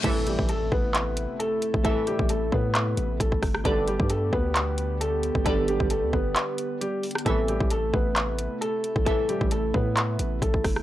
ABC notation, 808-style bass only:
X:1
M:4/4
L:1/16
Q:1/4=133
K:Am
V:1 name="808-style bass" clef=bass
A,,,3 A,,,3 A,,,4- A,,, z4 A,,,- | A,,, z2 A,,,3 A,,4 A,,,2 A,,,2 G,,,2 | G,,,3 G,,3 D,,8- D,, G,,, | G,,,3 G,,,2 D,, G,,,2 z8 |
A,,,3 A,,,3 A,,,4- A,,, z4 A,,,- | A,,, z2 A,,,3 A,,4 A,,,2 A,,,2 G,,,2 |]